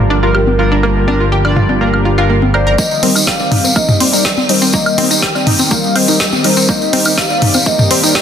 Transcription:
Already playing: analog synth bass G1, analog synth pad D3 F3 G3 A#3 F4, analog polysynth G3 D4 F4 A#4, soft synth lead A#4
0.10 synth pluck D4
0.23 analog polysynth G3 D4 F4 A#4, synth pluck F4
0.35 synth pluck G4, high woodblock
0.47 high conga
0.59 analog polysynth G3 D4 F4 A#4, synth pluck F4
0.72 synth pluck D4
0.83 synth pluck A#3, analog synth pad G4, high woodblock
1.08 analog polysynth G3 D4 F4 A#4, synth pluck D4, high conga
1.20 synth pluck F4
1.32 synth pluck G4
1.45 analog polysynth G3 D4 F4 D5, high woodblock
1.56 synth pluck F4, mid tom
1.69 synth pluck D4, high conga
1.81 analog polysynth G3 D4 F4 A#4, synth pluck A#3
1.94 high woodblock
2.05 synth pluck F4
2.18 analog polysynth G3 D4 F4 A#4, synth pluck F4
2.30 synth pluck A#3
2.42 high conga
2.54 analog polysynth A#3 D#4 G4 C5, synth pluck A#4, soft synth lead D5, high woodblock
2.67 synth pluck A#4
2.78 analog synth pad D#3 G3 A#3 C4 G4, synth pluck A#3, soft synth lead D#5, kick, tambourine
2.91 tambourine
3.03 analog polysynth G3 C4 D#4 A#4, synth pluck C4, open hi-hat, high conga
3.15 synth pluck D#4, tambourine, high woodblock
3.27 synth pluck G4, soft synth lead F5, kick, snare
3.39 analog polysynth G3 C4 D#4 D5, tambourine
3.52 synth pluck D#4, mid tom, open hi-hat
3.64 synth pluck C4, tambourine, high conga
3.76 analog polysynth G3 C4 D#4 A#4, synth pluck A#3, soft synth lead D#5, kick, tambourine, high woodblock
3.89 mid tom, tambourine
4.00 synth pluck C4, soft synth lead D5, open hi-hat
4.13 analog polysynth G3 C4 D#4 A#4, synth pluck D#4, tambourine
4.25 synth pluck G4, kick, snare, tambourine, high woodblock
4.37 tambourine, high conga
4.49 analog polysynth G3 C4 D#4 A#4, synth pluck D#4, soft synth lead C5, open hi-hat
4.62 synth pluck C4, tambourine
4.73 synth pluck A#3, soft synth lead D#5, kick, tambourine
4.86 tambourine, high woodblock
4.98 analog polysynth G3 C4 D#4 A#4, synth pluck C4, open hi-hat, high conga
5.11 synth pluck D#4, tambourine
5.22 synth pluck G4, soft synth lead G5, kick, snare
5.35 analog polysynth G3 C4 D#4 D5, tambourine, high woodblock
5.47 synth pluck D#4, mid tom, open hi-hat
5.59 synth pluck C4, tambourine, high conga
5.71 analog polysynth G3 C4 D#4 A#4, synth pluck A#3, soft synth lead F5, kick, tambourine
5.84 tambourine
5.96 synth pluck C4, soft synth lead D#5, open hi-hat, high woodblock
6.08 analog polysynth G3 C4 D#4 A#4, synth pluck D#4, tambourine
6.20 synth pluck G4, kick, snare, tambourine
6.33 tambourine, high conga
6.44 analog polysynth G3 C4 D#4 A#4, synth pluck D#4, soft synth lead C5, open hi-hat, high woodblock
6.56 synth pluck C4, tambourine
6.68 synth pluck A#3, soft synth lead D#5, kick, tambourine
6.82 tambourine
6.93 analog polysynth G3 C4 D#4 A#4, synth pluck C4, open hi-hat, high conga
7.05 synth pluck D#4, tambourine, high woodblock
7.18 synth pluck G4, soft synth lead F5, kick, snare, tambourine
7.30 analog polysynth G3 C4 D#4 D5, tambourine
7.42 synth pluck D#4, mid tom, open hi-hat
7.54 synth pluck C4, tambourine, high conga, high woodblock
7.66 analog polysynth G3 C4 D#4 A#4, synth pluck A#3, soft synth lead D#5, kick, tambourine
7.79 mid tom, tambourine
7.91 synth pluck C4, soft synth lead D5, open hi-hat
8.03 analog polysynth G3 C4 D#4 A#4, synth pluck D#4, tambourine
8.15 synth pluck G4, kick, snare, tambourine, high woodblock

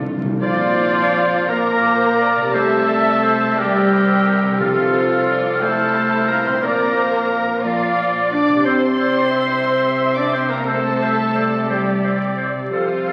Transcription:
Already playing: double bass section C2, viola section A3, violin section D4 F4
0.01 timpani C3
0.09 timpani C3
0.17 timpani C3
0.23 harp A#2, timpani C3
0.28 harp C4
0.32 timpani C3, harp D4
0.36 french horn section F3, harp A#4
0.41 double bass section A#1, cello section A#2, violin section F4 F5, oboe F4, clarinet C5, viola section D5, flute section C6
1.50 french horn section A#3, oboe A#4, viola section A#4, clarinet A#4, violin section A#4 A#5, flute section D6
1.86 viola section C5
2.20 viola section D5
2.36 harp C3
2.40 harp C4
2.45 harp E4
2.50 cello section C3, harp G4
2.54 double bass section C2, timpani C3, french horn section A3, violin section A4 A5, oboe A4, clarinet C5, viola section E5, flute section E6
2.88 clarinet D5
3.23 clarinet C5
3.57 french horn section G3, violin section G4 G5, oboe G4, clarinet A#4, viola section D5, flute section E6
3.93 viola section C5
4.26 viola section A#4
4.42 harp C3
4.47 harp C4
4.51 harp D4
4.56 harp A4
4.60 timpani C3, french horn section F3, violin section F4 F5, oboe F4, viola section A4, clarinet A4, flute section F6
4.94 viola section C5
5.27 viola section D5
5.60 french horn section A3, viola section E4, violin section A4 A5, oboe A4, clarinet C5
6.28 french horn section A#3, violin section A#4 A#5, oboe A#4
6.45 harp A#2, french horn section C4, violin section C5 C6, oboe C5
6.49 harp C4
6.54 harp D4
6.58 cello section A#2, harp A#4, viola section D5, violin section A#5
6.63 double bass section A#1, french horn section A#3, clarinet A#4, violin section A#4, oboe A#4, flute section D6
6.96 viola section C5
7.29 viola section A#4
7.63 french horn section F3, violin section F4 F5, oboe F4, viola section D5, clarinet D5, flute section D6
8.32 french horn section D4, violin section D5 D6, oboe D5
8.48 harp C3
8.52 harp C4
8.57 harp E4
8.61 harp G4, viola section C5, violin section C6
8.65 double bass section C2, cello section C3, french horn section C4, clarinet C5, oboe C5, violin section C5, flute section E6
8.98 clarinet C5, viola section D5, flute section E6
9.33 clarinet C5, viola section E5, flute section E6
9.68 clarinet C5, flute section E6
10.01 clarinet C5, flute section E6
10.17 french horn section D4, violin section D5 D6, oboe D5
10.33 french horn section C4, violin section C5 C6, oboe C5, clarinet C5, flute section E6
10.50 french horn section A#3, oboe A#4, violin section A#4 A#5
10.67 french horn section A3, violin section A4 A5, oboe A4, viola section C5, clarinet C5, flute section E6
11.02 clarinet C5, viola section E5, flute section E6
11.35 clarinet C5, viola section D5, flute section E6
11.68 french horn section G3, violin section G4 G5, oboe G4, clarinet C5
11.72 flute section E6
12.04 clarinet C5, flute section E6
12.37 clarinet C5, flute section E6
12.54 harp C3
12.59 harp C4
12.68 french horn section F3, violin section F4 F5, harp A4, viola section C5
12.72 double bass section C2, cello section C3, oboe F4, clarinet A4, flute section F6
13.07 clarinet A4, viola section A4, flute section F6

